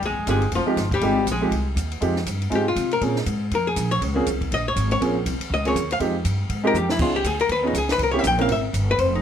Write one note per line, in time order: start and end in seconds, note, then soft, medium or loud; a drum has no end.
0.02 0.11 C2 medium
0.02 0.29 G#4 medium
0.02 kick soft
0.02 ride medium
0.06 0.18 G#1 soft
0.06 0.28 G#3 medium
0.19 0.26 F1 medium
0.27 0.51 G1 medium
0.27 0.40 G#3 medium
0.27 0.52 G#3 medium
0.27 0.41 C4 medium
0.27 0.41 D#4 medium
0.27 0.41 F4 medium
0.27 0.41 G4 medium
0.27 0.52 G#4 medium
0.27 kick soft
0.27 hi-hat pedal medium
0.27 ride medium
0.42 ride soft
0.52 0.65 F1 medium
0.52 0.91 F4 medium
0.52 kick soft
0.52 ride medium
0.56 0.91 F3 medium
0.66 0.76 G#3 medium
0.66 0.76 C4 medium
0.66 0.76 D#4 medium
0.66 0.76 F4 medium
0.66 0.76 G4 medium
0.66 muted upright bass stroke soft
0.77 1.01 G1 medium
0.77 kick soft
0.77 snare soft
0.77 hi-hat pedal medium
0.77 ride medium
0.91 1.26 G3 medium
0.91 1.25 G4 medium
0.91 kick medium
0.91 ride soft
1.01 1.25 G#1 medium
1.01 1.15 G#3 medium
1.01 1.15 C4 medium
1.01 1.15 D#4 medium
1.01 1.15 F4 medium
1.01 1.16 G4 medium
1.01 kick soft
1.01 ride medium
1.26 1.51 A#1 medium
1.26 kick soft
1.26 hi-hat pedal medium
1.26 ride medium
1.31 1.66 G#3 medium
1.31 1.66 G#4 medium
1.41 1.51 G#3 medium
1.41 1.51 C4 medium
1.41 1.51 D#4 medium
1.41 1.51 F4 medium
1.41 1.51 G4 medium
1.51 1.75 C2 medium
1.51 kick soft
1.51 ride medium
1.76 2.00 D#2 medium
1.76 kick soft
1.76 hi-hat pedal medium
1.76 ride medium
1.92 ride soft
2.01 2.26 F2 medium
2.01 2.14 G#3 medium
2.01 2.14 C4 medium
2.01 2.15 D#4 medium
2.01 2.15 F4 medium
2.01 2.15 G4 medium
2.01 kick soft
2.01 ride medium
2.16 snare soft
2.26 2.51 G2 medium
2.26 kick soft
2.26 hi-hat pedal medium
2.26 ride medium
2.42 ride soft
2.50 2.75 G#2 medium
2.50 2.64 G#3 medium
2.50 2.64 C4 medium
2.50 2.64 D#4 medium
2.50 2.64 F4 medium
2.50 2.65 G#4 medium
2.50 kick soft
2.50 ride medium
2.55 2.68 G4 medium
2.68 2.90 F4 medium
2.76 3.00 C3 medium
2.76 kick soft
2.76 hi-hat pedal soft
2.76 ride medium
2.91 3.02 A#4 medium
2.91 ride soft
3.01 3.25 A#2 medium
3.01 3.14 A#3 medium
3.01 3.14 C4 medium
3.01 3.14 C#4 medium
3.01 3.15 F4 medium
3.01 3.15 G#4 medium
3.01 kick soft
3.01 ride medium
3.16 snare soft
3.26 3.50 G#2 medium
3.26 kick soft
3.26 hi-hat pedal soft
3.26 ride medium
3.51 3.75 F2 medium
3.51 3.67 A#4 medium
3.51 kick soft
3.51 ride medium
3.67 3.90 G#4 medium
3.76 4.00 A#1 medium
3.76 kick soft
3.76 hi-hat pedal medium
3.76 ride medium
3.91 4.01 C#5 medium
3.91 ride soft
4.02 4.25 C#2 medium
4.02 kick soft
4.02 ride medium
4.15 4.24 A#3 medium
4.15 4.25 C4 medium
4.15 4.25 C#4 medium
4.15 4.25 F4 medium
4.15 4.25 G#4 medium
4.26 4.50 C2 medium
4.26 kick soft
4.26 hi-hat pedal medium
4.26 ride medium
4.41 kick soft
4.41 ride soft
4.51 4.75 A#1 medium
4.51 4.67 D#5 medium
4.51 kick soft
4.51 ride medium
4.68 4.90 C#5 medium
4.76 5.00 G#1 medium
4.76 kick soft
4.76 hi-hat pedal medium
4.76 ride medium
4.91 5.01 C#5 medium
4.91 ride soft
5.00 5.25 A#1 medium
5.00 5.14 A#3 medium
5.00 5.14 C4 medium
5.00 5.14 C#4 medium
5.00 5.14 F4 medium
5.00 5.14 G#4 medium
5.00 kick soft
5.00 ride medium
5.26 5.39 C2 medium
5.26 kick soft
5.26 hi-hat pedal medium
5.26 ride medium
5.40 muted upright bass stroke soft
5.40 ride medium
5.50 5.74 C#2 medium
5.50 5.66 D#5 medium
5.50 kick soft
5.65 5.74 A#3 medium
5.65 5.74 C4 medium
5.65 5.75 C#4 medium
5.65 5.75 F4 medium
5.65 5.75 G#4 medium
5.65 5.90 C#5 medium
5.65 ride soft
5.75 5.99 D#2 medium
5.75 kick soft
5.75 hi-hat pedal soft
5.75 ride medium
5.91 5.98 F5 medium
5.91 ride medium
5.99 6.24 F2 medium
5.99 6.13 G#3 medium
5.99 6.13 C4 medium
5.99 6.14 D#4 medium
5.99 6.14 F4 medium
5.99 6.14 G4 medium
5.99 kick soft
5.99 ride medium
6.25 6.49 G2 medium
6.25 kick soft
6.25 hi-hat pedal medium
6.25 ride medium
6.49 6.73 G#2 medium
6.49 kick soft
6.49 ride medium
6.63 6.73 G#3 medium
6.63 6.73 C4 medium
6.63 6.74 D#4 medium
6.63 6.73 F4 medium
6.63 6.74 G4 medium
6.63 6.76 A#4 medium
6.73 6.98 F2 medium
6.73 6.90 G4 medium
6.73 hi-hat pedal medium
6.73 mid tom soft
6.89 7.00 E4 medium
6.89 snare medium
6.98 7.23 C#2 medium
6.98 7.12 B3 medium
6.98 7.13 C#4 medium
6.98 7.13 D#4 medium
6.98 7.13 F4 medium
6.98 7.15 F4 medium
6.98 7.13 G#4 medium
6.98 kick medium
6.98 crash medium
7.16 7.25 G4 medium
7.24 7.48 D2 medium
7.24 7.40 G#4 medium
7.24 kick soft
7.24 hi-hat pedal medium
7.24 ride medium
7.39 7.50 A#4 medium
7.39 ride soft
7.49 7.73 D#2 medium
7.49 7.65 B4 medium
7.49 kick soft
7.49 ride medium
7.63 7.72 B3 medium
7.63 7.73 C#4 medium
7.63 7.73 D#4 medium
7.63 7.73 F4 medium
7.63 7.73 G#4 medium
7.67 7.75 D#4 soft
7.73 7.98 C#2 medium
7.73 kick soft
7.73 hi-hat pedal medium
7.73 ride medium
7.78 7.90 G#4 medium
7.89 8.00 B4 loud
7.89 snare medium
7.89 ride soft
7.98 8.23 C2 medium
7.98 kick soft
7.98 ride medium
8.03 8.09 A#4 medium
8.11 8.22 A#3 medium
8.11 8.22 C4 medium
8.11 8.23 C#4 medium
8.11 8.23 E4 medium
8.11 8.23 G4 medium
8.11 8.19 C#5 medium
8.19 8.25 E5 medium
8.24 8.48 A#1 medium
8.24 8.40 G5 loud
8.24 kick soft
8.24 hi-hat pedal medium
8.24 ride medium
8.38 8.47 A#3 medium
8.38 8.47 C4 medium
8.38 8.48 C#4 medium
8.38 8.48 E4 medium
8.38 8.48 A#4 medium
8.38 8.50 F5 loud
8.38 ride soft
8.48 8.73 G#1 medium
8.48 8.60 E5 medium
8.48 kick soft
8.48 ride medium
8.73 8.98 G1 medium
8.73 kick soft
8.73 hi-hat pedal medium
8.73 ride medium
8.91 9.00 B4 loud
8.98 9.22 F1 medium
8.98 9.14 C5 medium
8.98 kick soft
8.98 ride medium
9.15 9.22 D#4 soft